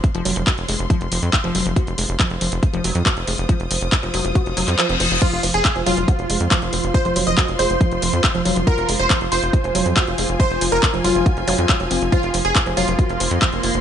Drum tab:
CC |----------------|----------------|----------------|x---------------|
HH |xxoxxxoxxxoxxxox|xxoxxxoxxxoxxxox|xxoxxxoxxxoxxxox|xxoxxxoxxxoxxxox|
CP |----x-------x---|----x-------x---|----x------xx---|----x-------x---|
BD |o---o---o---o---|o---o---o---o---|o---o---o-------|o---o---o---o---|

CC |----------------|----------------|----------------|----------------|
HH |xxo-xxoxxxoxxxox|xxoxxxoxxxoxxxo-|xxoxxxoxxxoxxxox|xxoxxxoxxxoxxxox|
CP |----x-------x---|----x-------x---|----x-------x---|----x-------x---|
BD |o---o---o---o---|o---o---o---o---|o---o---o---o---|o---o---o---o---|